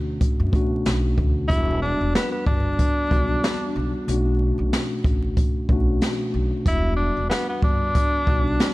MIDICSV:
0, 0, Header, 1, 5, 480
1, 0, Start_track
1, 0, Tempo, 645161
1, 1114, Time_signature, 4, 2, 24, 8
1, 6500, End_track
2, 0, Start_track
2, 0, Title_t, "Tenor saxophone"
2, 0, Program_c, 0, 66
2, 1100, Note_on_c, 0, 64, 103
2, 1322, Note_off_c, 0, 64, 0
2, 1355, Note_on_c, 0, 62, 88
2, 1570, Note_off_c, 0, 62, 0
2, 1602, Note_on_c, 0, 59, 85
2, 1720, Note_off_c, 0, 59, 0
2, 1724, Note_on_c, 0, 59, 77
2, 1819, Note_off_c, 0, 59, 0
2, 1837, Note_on_c, 0, 62, 93
2, 3005, Note_off_c, 0, 62, 0
2, 4969, Note_on_c, 0, 64, 107
2, 5178, Note_off_c, 0, 64, 0
2, 5181, Note_on_c, 0, 62, 89
2, 5403, Note_off_c, 0, 62, 0
2, 5428, Note_on_c, 0, 59, 93
2, 5554, Note_off_c, 0, 59, 0
2, 5573, Note_on_c, 0, 59, 78
2, 5664, Note_off_c, 0, 59, 0
2, 5683, Note_on_c, 0, 62, 96
2, 6500, Note_off_c, 0, 62, 0
2, 6500, End_track
3, 0, Start_track
3, 0, Title_t, "Tine electric piano"
3, 0, Program_c, 1, 4
3, 0, Control_c, 1, 64, 127
3, 0, Note_on_c, 1, 47, 88
3, 0, Note_on_c, 1, 57, 81
3, 0, Note_on_c, 1, 61, 78
3, 0, Note_on_c, 1, 62, 74
3, 0, Note_on_c, 1, 66, 94
3, 387, Note_off_c, 1, 47, 0
3, 387, Note_on_c, 1, 47, 87
3, 394, Note_off_c, 1, 57, 0
3, 394, Note_on_c, 1, 57, 76
3, 401, Note_off_c, 1, 61, 0
3, 401, Note_on_c, 1, 61, 75
3, 408, Note_off_c, 1, 62, 0
3, 408, Note_on_c, 1, 62, 76
3, 416, Note_off_c, 1, 66, 0
3, 416, Note_on_c, 1, 66, 95
3, 1029, Note_off_c, 1, 47, 0
3, 1033, Note_off_c, 1, 57, 0
3, 1036, Note_off_c, 1, 61, 0
3, 1040, Note_off_c, 1, 62, 0
3, 1044, Note_off_c, 1, 66, 0
3, 1107, Note_on_c, 1, 40, 73
3, 1115, Note_on_c, 1, 55, 62
3, 1122, Note_on_c, 1, 59, 67
3, 1123, Control_c, 1, 64, 0
3, 1130, Note_on_c, 1, 62, 67
3, 1137, Note_on_c, 1, 66, 76
3, 1253, Control_c, 1, 64, 127
3, 1961, Note_off_c, 1, 40, 0
3, 1965, Note_off_c, 1, 55, 0
3, 1969, Note_off_c, 1, 59, 0
3, 1972, Note_off_c, 1, 62, 0
3, 1976, Note_off_c, 1, 66, 0
3, 2295, Note_on_c, 1, 40, 77
3, 2303, Note_on_c, 1, 55, 63
3, 2311, Note_on_c, 1, 59, 64
3, 2319, Note_on_c, 1, 62, 66
3, 2325, Note_on_c, 1, 66, 82
3, 2944, Note_off_c, 1, 40, 0
3, 2948, Note_off_c, 1, 55, 0
3, 2952, Note_off_c, 1, 59, 0
3, 2956, Note_off_c, 1, 62, 0
3, 2959, Note_off_c, 1, 66, 0
3, 3026, Note_on_c, 1, 47, 88
3, 3033, Note_on_c, 1, 57, 82
3, 3041, Note_on_c, 1, 61, 77
3, 3044, Control_c, 1, 64, 0
3, 3049, Note_on_c, 1, 62, 73
3, 3055, Note_on_c, 1, 66, 97
3, 3154, Control_c, 1, 64, 127
3, 3880, Note_off_c, 1, 47, 0
3, 3884, Note_off_c, 1, 57, 0
3, 3888, Note_off_c, 1, 61, 0
3, 3892, Note_off_c, 1, 62, 0
3, 3895, Note_off_c, 1, 66, 0
3, 4228, Note_on_c, 1, 47, 88
3, 4235, Note_on_c, 1, 57, 77
3, 4242, Note_on_c, 1, 61, 75
3, 4250, Note_on_c, 1, 62, 78
3, 4257, Note_on_c, 1, 66, 97
3, 4870, Note_off_c, 1, 47, 0
3, 4874, Note_off_c, 1, 57, 0
3, 4877, Note_off_c, 1, 61, 0
3, 4881, Note_off_c, 1, 62, 0
3, 4885, Note_off_c, 1, 66, 0
3, 4948, Note_on_c, 1, 40, 74
3, 4956, Note_on_c, 1, 55, 64
3, 4963, Note_on_c, 1, 59, 67
3, 4964, Control_c, 1, 64, 0
3, 4971, Note_on_c, 1, 62, 66
3, 4978, Note_on_c, 1, 66, 76
3, 5072, Control_c, 1, 64, 127
3, 5802, Note_off_c, 1, 40, 0
3, 5805, Note_off_c, 1, 55, 0
3, 5809, Note_off_c, 1, 59, 0
3, 5813, Note_off_c, 1, 62, 0
3, 5817, Note_off_c, 1, 66, 0
3, 6137, Note_on_c, 1, 40, 77
3, 6144, Note_on_c, 1, 55, 64
3, 6152, Note_on_c, 1, 59, 64
3, 6159, Note_on_c, 1, 62, 64
3, 6167, Note_on_c, 1, 66, 80
3, 6500, Note_off_c, 1, 40, 0
3, 6500, Note_off_c, 1, 55, 0
3, 6500, Note_off_c, 1, 59, 0
3, 6500, Note_off_c, 1, 62, 0
3, 6500, Note_off_c, 1, 66, 0
3, 6500, End_track
4, 0, Start_track
4, 0, Title_t, "Upright bass"
4, 0, Program_c, 2, 32
4, 0, Note_on_c, 2, 38, 85
4, 117, Note_off_c, 2, 38, 0
4, 295, Note_on_c, 2, 42, 90
4, 379, Note_off_c, 2, 42, 0
4, 394, Note_on_c, 2, 47, 89
4, 596, Note_off_c, 2, 47, 0
4, 637, Note_on_c, 2, 35, 88
4, 838, Note_off_c, 2, 35, 0
4, 877, Note_on_c, 2, 38, 91
4, 1078, Note_off_c, 2, 38, 0
4, 1115, Note_on_c, 2, 28, 102
4, 1433, Note_off_c, 2, 28, 0
4, 1494, Note_on_c, 2, 28, 85
4, 1579, Note_off_c, 2, 28, 0
4, 1834, Note_on_c, 2, 31, 94
4, 2036, Note_off_c, 2, 31, 0
4, 2315, Note_on_c, 2, 35, 88
4, 2517, Note_off_c, 2, 35, 0
4, 2795, Note_on_c, 2, 35, 90
4, 2910, Note_off_c, 2, 35, 0
4, 3036, Note_on_c, 2, 35, 108
4, 3353, Note_off_c, 2, 35, 0
4, 3413, Note_on_c, 2, 35, 85
4, 3498, Note_off_c, 2, 35, 0
4, 3754, Note_on_c, 2, 33, 93
4, 3956, Note_off_c, 2, 33, 0
4, 4233, Note_on_c, 2, 35, 85
4, 4435, Note_off_c, 2, 35, 0
4, 4715, Note_on_c, 2, 35, 90
4, 4831, Note_off_c, 2, 35, 0
4, 4953, Note_on_c, 2, 28, 107
4, 5272, Note_off_c, 2, 28, 0
4, 5333, Note_on_c, 2, 28, 90
4, 5418, Note_off_c, 2, 28, 0
4, 5673, Note_on_c, 2, 31, 93
4, 5875, Note_off_c, 2, 31, 0
4, 6155, Note_on_c, 2, 35, 90
4, 6356, Note_off_c, 2, 35, 0
4, 6500, End_track
5, 0, Start_track
5, 0, Title_t, "Drums"
5, 155, Note_on_c, 9, 42, 89
5, 156, Note_on_c, 9, 36, 95
5, 229, Note_off_c, 9, 42, 0
5, 230, Note_off_c, 9, 36, 0
5, 394, Note_on_c, 9, 36, 89
5, 403, Note_on_c, 9, 42, 52
5, 468, Note_off_c, 9, 36, 0
5, 477, Note_off_c, 9, 42, 0
5, 637, Note_on_c, 9, 42, 80
5, 641, Note_on_c, 9, 38, 102
5, 711, Note_off_c, 9, 42, 0
5, 715, Note_off_c, 9, 38, 0
5, 876, Note_on_c, 9, 36, 87
5, 950, Note_off_c, 9, 36, 0
5, 1114, Note_on_c, 9, 36, 107
5, 1119, Note_on_c, 9, 42, 96
5, 1189, Note_off_c, 9, 36, 0
5, 1193, Note_off_c, 9, 42, 0
5, 1601, Note_on_c, 9, 42, 71
5, 1602, Note_on_c, 9, 38, 110
5, 1675, Note_off_c, 9, 42, 0
5, 1676, Note_off_c, 9, 38, 0
5, 1834, Note_on_c, 9, 36, 97
5, 1908, Note_off_c, 9, 36, 0
5, 2076, Note_on_c, 9, 36, 91
5, 2076, Note_on_c, 9, 42, 92
5, 2150, Note_off_c, 9, 42, 0
5, 2151, Note_off_c, 9, 36, 0
5, 2314, Note_on_c, 9, 36, 88
5, 2323, Note_on_c, 9, 42, 50
5, 2388, Note_off_c, 9, 36, 0
5, 2397, Note_off_c, 9, 42, 0
5, 2556, Note_on_c, 9, 42, 78
5, 2560, Note_on_c, 9, 38, 104
5, 2630, Note_off_c, 9, 42, 0
5, 2634, Note_off_c, 9, 38, 0
5, 3038, Note_on_c, 9, 42, 91
5, 3112, Note_off_c, 9, 42, 0
5, 3519, Note_on_c, 9, 42, 69
5, 3520, Note_on_c, 9, 38, 114
5, 3593, Note_off_c, 9, 42, 0
5, 3594, Note_off_c, 9, 38, 0
5, 3753, Note_on_c, 9, 36, 94
5, 3762, Note_on_c, 9, 42, 49
5, 3827, Note_off_c, 9, 36, 0
5, 3836, Note_off_c, 9, 42, 0
5, 3994, Note_on_c, 9, 42, 92
5, 3995, Note_on_c, 9, 36, 94
5, 4068, Note_off_c, 9, 42, 0
5, 4069, Note_off_c, 9, 36, 0
5, 4233, Note_on_c, 9, 36, 87
5, 4307, Note_off_c, 9, 36, 0
5, 4475, Note_on_c, 9, 42, 80
5, 4479, Note_on_c, 9, 38, 106
5, 4549, Note_off_c, 9, 42, 0
5, 4553, Note_off_c, 9, 38, 0
5, 4953, Note_on_c, 9, 36, 109
5, 4956, Note_on_c, 9, 42, 94
5, 5027, Note_off_c, 9, 36, 0
5, 5031, Note_off_c, 9, 42, 0
5, 5438, Note_on_c, 9, 42, 73
5, 5439, Note_on_c, 9, 38, 113
5, 5513, Note_off_c, 9, 38, 0
5, 5513, Note_off_c, 9, 42, 0
5, 5673, Note_on_c, 9, 36, 96
5, 5747, Note_off_c, 9, 36, 0
5, 5914, Note_on_c, 9, 42, 89
5, 5915, Note_on_c, 9, 36, 95
5, 5988, Note_off_c, 9, 42, 0
5, 5990, Note_off_c, 9, 36, 0
5, 6153, Note_on_c, 9, 36, 91
5, 6228, Note_off_c, 9, 36, 0
5, 6396, Note_on_c, 9, 42, 80
5, 6400, Note_on_c, 9, 38, 107
5, 6470, Note_off_c, 9, 42, 0
5, 6474, Note_off_c, 9, 38, 0
5, 6500, End_track
0, 0, End_of_file